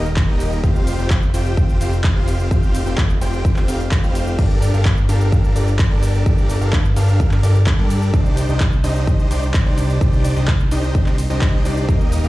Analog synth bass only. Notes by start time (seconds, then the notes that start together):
Already playing: D#1
0.28 D#1
0.64 F1
0.99 F1
1.34 F1
1.81 F1
2.16 F1
2.51 F1
2.86 F1
3.21 F1
3.68 F1
4.03 F1
4.39 G1
4.74 G1
5.09 G1
5.56 G1
5.91 G1
6.26 G1
6.61 G1
6.96 G1
7.43 G1
7.78 G2
8.14 C2
8.49 C2
8.84 C2
9.31 C2
9.66 C2
10.01 C2
10.36 C2
10.71 C2
11.30 C2
11.65 C2
11.89 D#1
12.24 D#1